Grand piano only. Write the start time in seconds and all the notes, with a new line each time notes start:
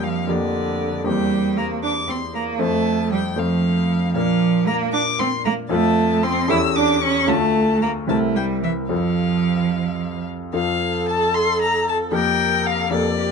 Already playing: F2 A#3 D4 G4
0.27 F2 A#3 D4 G4
1.04 E2 A#3 C4 G4
2.59 F2 A3 C4 C5
3.36 F2 A3 C4 C5
4.14 A#2 A#3 D4 A#4
5.69 F2 C4 F4 A4
6.48 E2 C#4 G4 A4
7.26 D2 A3 F4 A4
8.07 C2 C4 E4 A#4
8.89 F2 C4 F4 A4
10.53 F2 C4 F4 A4
12.11 F2 A#3 G4 A#4
12.90 F2 A#3 G4 A#4